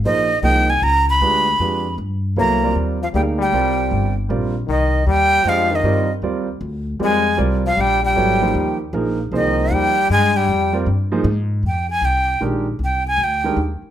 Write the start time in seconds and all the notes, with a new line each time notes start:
0.04 A#1 F3 A#3 D#4 G#4 C5 D#5
0.43 C2 F3 A#3 D#4 G#4 D#5 G5
0.70 G#5
0.82 C#2 A#5
1.10 B5
1.21 D2 G#3 D4 F4 G4 B4
1.59 F2 G#3 D4 F4 G4 B4
1.98 G2
2.36 C2 F#3 A#3 B3 E4 A4 C#5 A#5
2.63 G3 C4 F4 A#4 D5
2.75 D#2
3.02 F3 F5
3.13 D2 G3 A#3 D#4 G#4 D5 F5 G5
3.38 G3 G5
3.53 C2 G3 C4 F4 A#4 D5
3.91 G1
4.29 A#1 G3 C4 F4 A#4 D5
4.67 C2 D#3 D#5
5.07 D#2 G3 G5
5.44 F2 F3 G#3 D4 G4 C5 D#5
5.49 F5
5.71 D#3
5.75 D#5
5.83 G2 G3 C4 F4 A#4 D5
6.22 D#2 G3 C4 F4 A#4 D5
6.61 D2
6.99 F2 G3 G#3 C4 F4 A#4 D5
7.04 G#5
7.37 C2 G3 C4 F4 A#4 D5
7.65 F3 F5
7.77 A#1 G3 G5
8.03 G3 G5
8.16 G#1 F#3 B3 E4 A4 C#5
8.42 F3 A#3 D#4 G4 C5
8.55 D#2
8.93 A#1 F3 A#3 D#4 G#4 A#4
9.32 C2 D#3 F3 A#3 D#4 G#4 C5
9.36 D#5
9.70 D#2 G3 G5
10.10 G2 G#3 G#5
10.36 G3 G5
10.48 F2
10.73 G3 C4 F4 A#4 D5
10.86 G2
11.12 F3 A#3 D#4 G#4 C5
11.24 G#2
11.63 F2 G5
11.90 G#5
12.01 C2 G5
12.41 A#1 D#3 G#3 D4 G4 A#4
12.79 C2
12.84 G5
13.08 G#5
13.18 D2
13.24 G5
13.44 D#3 G#3 D4 G4 A#4
13.56 D#2
13.82 muted upright bass stroke